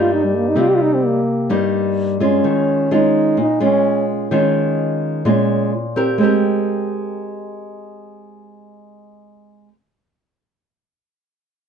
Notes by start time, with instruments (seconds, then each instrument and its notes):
Already playing: nylon-string guitar G2 G3 A#3 D#4
0.01 trombone F4
0.13 trombone D#4
0.25 trombone G3
0.36 trombone A#3
0.48 trombone D#4
0.55 nylon-string guitar C3 G3 A#3 D#4
0.60 trombone F4
0.69 trombone G4
0.75 trombone F4
0.82 trombone D#4
0.94 trombone C4
1.06 trombone A#3
1.50 nylon-string guitar G2 G3 A#3 D#4
2.20 nylon-string guitar G#3 C#4 F4, trombone C#4
2.44 nylon-string guitar D#3
2.91 nylon-string guitar G#3 C#4 F4, trombone D#4
3.37 nylon-string guitar A#2, trombone D#4
3.60 nylon-string guitar G#3 C#4 F4, trombone C#4
4.31 nylon-string guitar D#3 G#3 C#4 F4
5.25 nylon-string guitar A#2 G#3 C#4 F4
5.96 nylon-string guitar C4 G4 A#4
6.18 nylon-string guitar G#3 C4
6.23 nylon-string guitar G4 A#4